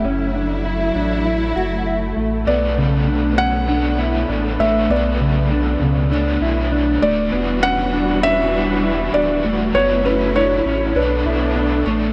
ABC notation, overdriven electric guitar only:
X:1
M:4/4
L:1/8
Q:1/4=99
K:Bm
V:1 name="Overdriven electric guitar"
z8 | [B,,F,A,F]4 [A,DFc]3 [A,DFc] | [B,,F,A,F]4 [A,DFc]3 [A,DF] | [E,G,DF]4 [E,G,DF]3 [G,DF] |
[F,A,EFc]4 [A,DAc]3 [A,DAc] |]